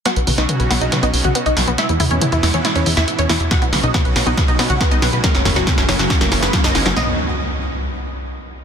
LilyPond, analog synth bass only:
\new Staff \with { instrumentName = "Analog synth bass" } { \clef bass \time 4/4 \key b \major \tempo 4 = 139 r16 b,,16 b,,16 b,,16 r16 b,,16 b,,16 b,,16 r16 b,,16 b,,16 b,,16 r16 b,,16 b,,16 b,,16 | r16 e,16 e,16 e,16 r16 e,16 e,16 e,16 r16 e,16 e,16 e,16 r16 e,16 e,16 e,16 | r16 b,,16 b,,16 b,,16 r16 b,,16 b,,16 b,,16 r16 b,,16 b,,16 b,,16 r16 b,,16 b,,16 b,,16 | r16 fis,,16 fis,,16 fis,,16 r16 fis,,16 fis,,16 fis,,16 r16 fis,,16 fis,,16 fis,,16 r16 fis,,16 fis,,16 fis,,16 |
b,,8 r2. r8 | }